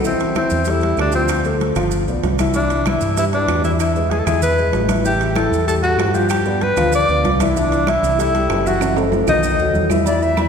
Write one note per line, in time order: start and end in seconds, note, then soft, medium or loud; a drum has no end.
0.04 0.30 E3 medium
0.04 0.34 C4 medium
0.04 0.30 E4 medium
0.04 0.30 E5 medium
0.04 high conga soft
0.04 maracas medium
0.20 high conga soft
0.20 high timbale medium
0.20 maracas soft
0.35 0.61 E3 medium
0.35 0.72 C4 medium
0.35 0.62 E4 medium
0.35 0.62 E5 medium
0.35 high conga loud
0.35 high timbale medium
0.35 low timbale medium
0.35 claves medium
0.35 maracas soft
0.50 0.95 E2 medium
0.50 high conga soft
0.50 maracas medium
0.65 0.80 G3 medium
0.65 0.80 G4 medium
0.65 0.80 A4 medium
0.65 high conga soft
0.65 high timbale medium
0.65 maracas medium
0.70 1.00 E4 loud
0.81 1.08 G3 medium
0.81 1.08 G4 medium
0.81 1.09 A4 medium
0.81 high conga soft
0.81 high timbale medium
0.81 maracas soft
0.97 1.71 D2 medium
0.97 1.14 D4 medium
0.97 high conga soft
0.97 high timbale medium
0.97 low timbale medium
0.97 claves medium
0.97 maracas soft
1.12 1.39 F3 medium
1.12 1.44 C4 medium
1.12 1.40 F4 medium
1.12 1.40 F5 medium
1.12 maracas medium
1.28 high conga soft
1.28 high timbale loud
1.28 claves medium
1.28 maracas medium
1.44 1.71 A3 medium
1.44 1.71 A4 medium
1.44 1.71 C5 medium
1.44 high conga soft
1.44 maracas soft
1.60 high conga medium
1.60 high timbale medium
1.60 low timbale medium
1.60 maracas soft
1.75 2.05 G1 medium
1.75 2.02 F3 medium
1.75 2.02 F4 medium
1.75 2.02 F5 medium
1.75 high conga soft
1.75 low conga medium
1.75 high timbale medium
1.75 claves medium
1.75 maracas medium
1.91 high conga soft
1.91 maracas medium
2.08 2.23 B1 medium
2.08 2.34 B3 medium
2.08 2.34 B4 medium
2.08 2.34 D5 medium
2.08 high conga soft
2.08 maracas soft
2.23 2.96 C2 medium
2.23 high conga medium
2.23 high timbale medium
2.23 low timbale medium
2.23 maracas soft
2.39 2.52 E3 medium
2.39 2.52 E4 medium
2.39 2.53 E5 medium
2.39 high conga medium
2.39 high timbale loud
2.39 claves medium
2.39 maracas medium
2.54 2.81 E3 medium
2.54 2.88 D4 medium
2.54 2.81 E4 medium
2.54 2.81 E5 medium
2.54 high conga soft
2.54 maracas medium
2.70 high conga soft
2.70 high timbale medium
2.70 maracas soft
2.86 3.12 E3 medium
2.86 3.18 E4 medium
2.86 3.13 E4 medium
2.86 3.13 E5 medium
2.86 high conga loud
2.86 high timbale medium
2.86 low timbale medium
2.86 claves medium
2.86 maracas soft
3.01 3.45 G2 medium
3.01 high conga soft
3.01 maracas medium
3.17 3.30 G3 medium
3.17 3.25 E4 medium
3.17 3.30 G4 medium
3.17 3.31 B4 medium
3.17 high conga soft
3.17 high timbale medium
3.17 maracas medium
3.33 3.59 G3 medium
3.33 3.63 D4 medium
3.33 3.59 G4 medium
3.33 3.60 B4 medium
3.33 high conga soft
3.33 high timbale medium
3.33 maracas soft
3.48 4.21 E2 loud
3.48 high conga soft
3.48 high timbale loud
3.48 low timbale medium
3.48 claves medium
3.48 maracas soft
3.64 3.90 E3 medium
3.64 3.71 E4 medium
3.64 3.90 E4 medium
3.64 3.90 E5 medium
3.64 maracas medium
3.80 4.12 E4 medium
3.80 high conga soft
3.80 high timbale medium
3.80 claves medium
3.80 maracas medium
3.96 4.22 G#3 medium
3.96 4.22 G#4 medium
3.96 4.22 B4 medium
3.96 high conga soft
3.96 maracas soft
4.11 4.20 G#4 medium
4.11 high conga medium
4.11 high timbale medium
4.11 low timbale medium
4.11 maracas soft
4.18 4.27 A4 medium
4.25 4.71 E2 medium
4.25 4.53 E3 medium
4.25 4.53 E4 medium
4.25 4.42 G#4 loud
4.25 4.53 E5 medium
4.25 high conga soft
4.25 low conga medium
4.25 high timbale medium
4.25 claves medium
4.25 maracas medium
4.42 4.87 B4 loud
4.42 high conga soft
4.42 low conga medium
4.42 maracas medium
4.58 4.84 G#3 medium
4.58 4.84 G#4 medium
4.58 4.84 B4 medium
4.58 high conga soft
4.58 maracas soft
4.73 5.47 A1 medium
4.73 high conga medium
4.73 high timbale medium
4.73 low timbale medium
4.73 maracas soft
4.89 5.02 E3 medium
4.89 5.02 E4 medium
4.89 5.02 E5 medium
4.89 high conga medium
4.89 high timbale loud
4.89 claves medium
4.89 maracas medium
5.04 5.31 E3 medium
5.04 5.31 E4 medium
5.04 5.38 G4 loud
5.04 5.31 E5 medium
5.04 high conga soft
5.04 maracas medium
5.20 high conga soft
5.20 high timbale medium
5.20 maracas soft
5.35 5.62 E3 medium
5.35 5.62 E4 medium
5.35 5.67 A4 medium
5.35 5.62 E5 medium
5.35 high conga loud
5.35 high timbale medium
5.35 low timbale medium
5.35 claves medium
5.35 maracas soft
5.51 5.95 E2 medium
5.51 high conga soft
5.51 maracas medium
5.67 5.80 G3 medium
5.67 5.81 G4 medium
5.67 5.75 A4 medium
5.67 5.81 A4 medium
5.67 high conga soft
5.67 high timbale medium
5.67 maracas medium
5.82 6.09 G3 medium
5.82 6.09 E4 medium
5.82 6.16 F#4 loud
5.82 6.09 A4 medium
5.82 high timbale medium
5.82 maracas soft
5.98 6.72 G2 medium
5.98 high conga soft
5.98 high timbale loud
5.98 low timbale medium
5.98 claves medium
5.98 maracas soft
6.14 6.40 F3 medium
6.14 6.40 F4 medium
6.14 6.29 G4 medium
6.14 6.41 F5 medium
6.14 maracas medium
6.29 6.64 G4 loud
6.29 high conga soft
6.29 high timbale loud
6.29 claves medium
6.29 maracas medium
6.45 6.72 B3 medium
6.45 6.72 B4 medium
6.45 6.72 D5 medium
6.45 high conga soft
6.45 maracas soft
6.61 6.93 B4 loud
6.61 high conga medium
6.61 high timbale medium
6.61 low timbale medium
6.61 maracas soft
6.77 7.06 D2 medium
6.77 7.03 F3 loud
6.77 7.03 F4 medium
6.77 7.04 F5 medium
6.77 high conga soft
6.77 low conga medium
6.77 high timbale medium
6.77 claves medium
6.77 maracas medium
6.92 7.38 D5 loud
6.92 high conga soft
6.92 maracas medium
7.09 7.24 D2 medium
7.09 7.35 B3 medium
7.09 7.35 B4 medium
7.09 7.35 D5 medium
7.09 high conga soft
7.09 maracas soft
7.24 7.97 C2 medium
7.24 high conga medium
7.24 high timbale medium
7.24 low timbale medium
7.24 maracas soft
7.40 7.53 E3 medium
7.40 7.53 E4 medium
7.40 7.53 E5 medium
7.40 high conga medium
7.40 high timbale loud
7.40 claves medium
7.40 maracas medium
7.49 7.59 E4 medium
7.56 7.82 E3 medium
7.56 7.90 D4 loud
7.56 7.82 E4 medium
7.56 7.82 E5 medium
7.56 maracas medium
7.72 high conga soft
7.72 high timbale medium
7.72 maracas soft
7.87 8.13 E3 medium
7.87 8.13 E4 medium
7.87 8.19 E4 loud
7.87 8.13 E5 medium
7.87 high conga loud
7.87 high timbale loud
7.87 low timbale medium
7.87 claves medium
7.87 maracas soft
8.03 8.46 C2 medium
8.03 high conga soft
8.03 maracas medium
8.18 8.31 G3 medium
8.18 8.69 E4 loud
8.18 8.31 G4 medium
8.18 8.31 A4 medium
8.18 high conga soft
8.18 high timbale medium
8.18 maracas medium
8.34 8.60 G3 medium
8.34 8.60 G4 medium
8.34 8.60 A4 medium
8.34 high conga soft
8.34 high timbale medium
8.34 maracas soft
8.49 9.22 F#1 loud
8.49 high conga soft
8.49 high timbale loud
8.49 low timbale medium
8.49 claves medium
8.49 maracas soft
8.65 8.91 E3 medium
8.65 8.91 E4 medium
8.65 8.98 F#4 loud
8.65 8.91 E5 loud
8.65 maracas medium
8.81 high conga soft
8.81 high timbale medium
8.81 claves medium
8.81 maracas medium
8.96 9.22 A3 medium
8.96 9.23 A4 medium
8.96 9.23 C5 medium
8.96 high conga soft
8.96 high timbale loud
8.96 maracas soft
9.12 high conga medium
9.12 low timbale loud
9.12 maracas soft
9.27 9.57 B1 medium
9.27 9.54 D#3 loud
9.27 9.54 D#4 loud
9.27 9.87 D#4 loud
9.27 9.54 D#5 medium
9.27 high conga soft
9.27 low conga medium
9.27 low timbale medium
9.27 claves medium
9.27 maracas medium
9.43 high conga soft
9.43 maracas medium
9.58 9.73 D#2 medium
9.58 9.85 F#3 medium
9.58 9.85 F#4 medium
9.58 9.85 A4 medium
9.58 high conga soft
9.58 maracas soft
9.74 10.47 E2 loud
9.74 high conga medium
9.74 maracas soft
9.90 10.03 E3 medium
9.90 10.04 E4 medium
9.90 10.04 E5 loud
9.90 high conga loud
9.90 low timbale medium
9.90 claves medium
9.90 maracas medium
10.06 10.32 E3 medium
10.06 10.32 E4 medium
10.06 10.24 D5 medium
10.06 10.32 E5 medium
10.06 high conga soft
10.06 low agogo medium
10.06 maracas medium
10.22 10.48 E5 loud
10.22 high conga soft
10.22 maracas soft
10.37 10.48 E3 medium
10.37 10.48 E4 medium
10.37 10.48 E5 medium
10.37 high conga loud
10.37 low timbale medium
10.37 low agogo loud
10.37 claves medium
10.37 maracas soft